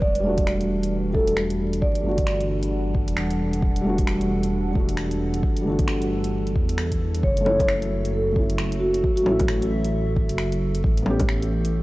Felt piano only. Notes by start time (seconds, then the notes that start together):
0.20 G3 A3
0.26 D4 F#4
1.10 G3 A3
1.16 D4 F#4
2.00 G3 A3
2.06 D4 F#4
3.81 G3 A3
3.86 D4 F#4
4.71 G3 A3
4.77 D4 F#4
5.61 G3 A3
5.67 D4 F#4
7.41 A3 C#4
7.49 E4
8.32 A3
8.36 C#4 E4
9.23 A3 C#4
9.31 E4
11.02 B3
11.06 C#4 G4